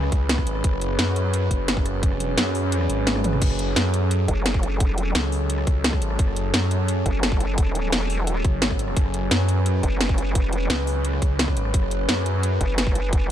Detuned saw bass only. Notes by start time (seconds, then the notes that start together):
Already playing: C#2
0.12 C#2
0.47 G#1
0.64 F#1
0.99 F#2
1.51 F#1
2.11 F1
2.38 F#2
2.90 G#1
3.42 F#1
3.76 F#2
5.15 C#2
5.67 C#2
6.02 G#1
6.19 F#1
6.54 F#2
8.45 F#1
8.62 G#1
8.97 F#1
9.31 F#2
10.70 C#2
11.22 C#2
11.57 G#1
11.74 F#1
12.09 F#2